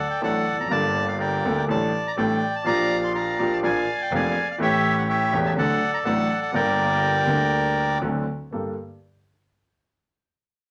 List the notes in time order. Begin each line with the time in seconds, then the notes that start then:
Already playing: A4 D5
0.10 G5
0.21 A1 A2 F#3 A3 D4 A4 D5 F#5
0.45 F1
0.53 E2
0.59 F2 A#5
0.65 F#2 G3
0.69 G1 G2 A#3 D4 A4 D5 A5
1.08 F5
1.19 A#4 D5 G5
1.43 D2 D3 G3 A#3 D4 A4
1.58 G5
1.68 A1 A2 G3 A3 D4 A4 D5 A5
2.07 A#5
2.17 A1 A2 G3 A3 D4 A4 D5 G5
2.55 A5
2.64 A#1 A#2 F3 A#3 D4 G4 D5 F5 A#5
3.04 C6
3.14 D5 F5 A#5
3.39 A#1 A#2 F3 A#3 D4 G4
3.53 A5
3.62 A#1 A#2 F3 A#3 D4 G#4 D5 F5 G#5
4.02 G5
4.11 F1 F2 F3 A#3 D4 G#4 D5 F5
4.16 G#5
4.51 F5
4.58 A1 A2 E3 A3 C#4 G4 C#5 E5
4.98 F#5
5.09 C#5 E5 G5
5.31 E1 E2 E3 A3 C#4 G4
5.46 A5
5.55 D2 D3 F#3 A3 D4 A4 D5 F#5
5.94 A#5
6.04 A1 A2 F#3 A3 D4 A4 D5 F#5 A5
6.42 F#5
6.52 G1 G2 G3 A#3 D4 A#4 D5 G5
7.24 D2 D3 G3 A#3 D4
7.28 A#4
8.01 D2 D3 F#3 C4 D4 A4
8.52 G1 G2 A#3 G4 A4